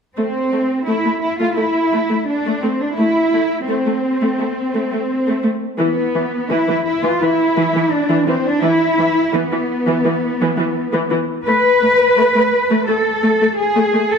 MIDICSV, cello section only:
0, 0, Header, 1, 2, 480
1, 0, Start_track
1, 0, Key_signature, 0, "minor"
1, 0, Tempo, 705882
1, 109, Time_signature, 4, 2, 24, 8
1, 9644, End_track
2, 0, Start_track
2, 0, Title_t, "Cello section"
2, 0, Program_c, 0, 48
2, 109, Note_on_c, 0, 60, 49
2, 562, Note_off_c, 0, 60, 0
2, 592, Note_on_c, 0, 64, 46
2, 817, Note_off_c, 0, 64, 0
2, 826, Note_on_c, 0, 64, 45
2, 945, Note_off_c, 0, 64, 0
2, 950, Note_on_c, 0, 65, 43
2, 1065, Note_on_c, 0, 64, 49
2, 1068, Note_off_c, 0, 65, 0
2, 1538, Note_off_c, 0, 64, 0
2, 1545, Note_on_c, 0, 62, 50
2, 1783, Note_off_c, 0, 62, 0
2, 1786, Note_on_c, 0, 60, 44
2, 1908, Note_off_c, 0, 60, 0
2, 1914, Note_on_c, 0, 62, 44
2, 2027, Note_on_c, 0, 64, 54
2, 2032, Note_off_c, 0, 62, 0
2, 2499, Note_off_c, 0, 64, 0
2, 2508, Note_on_c, 0, 60, 46
2, 3685, Note_off_c, 0, 60, 0
2, 3946, Note_on_c, 0, 59, 52
2, 4401, Note_off_c, 0, 59, 0
2, 4424, Note_on_c, 0, 64, 54
2, 4655, Note_off_c, 0, 64, 0
2, 4664, Note_on_c, 0, 64, 55
2, 4784, Note_off_c, 0, 64, 0
2, 4794, Note_on_c, 0, 65, 49
2, 4907, Note_on_c, 0, 64, 58
2, 4912, Note_off_c, 0, 65, 0
2, 5386, Note_on_c, 0, 62, 55
2, 5388, Note_off_c, 0, 64, 0
2, 5628, Note_off_c, 0, 62, 0
2, 5629, Note_on_c, 0, 60, 51
2, 5747, Note_off_c, 0, 60, 0
2, 5759, Note_on_c, 0, 62, 57
2, 5866, Note_on_c, 0, 64, 61
2, 5874, Note_off_c, 0, 62, 0
2, 6348, Note_off_c, 0, 64, 0
2, 6351, Note_on_c, 0, 59, 57
2, 7550, Note_off_c, 0, 59, 0
2, 7791, Note_on_c, 0, 71, 81
2, 8723, Note_off_c, 0, 71, 0
2, 8753, Note_on_c, 0, 69, 64
2, 9231, Note_off_c, 0, 69, 0
2, 9231, Note_on_c, 0, 68, 68
2, 9583, Note_off_c, 0, 68, 0
2, 9595, Note_on_c, 0, 69, 73
2, 9644, Note_off_c, 0, 69, 0
2, 9644, End_track
0, 0, End_of_file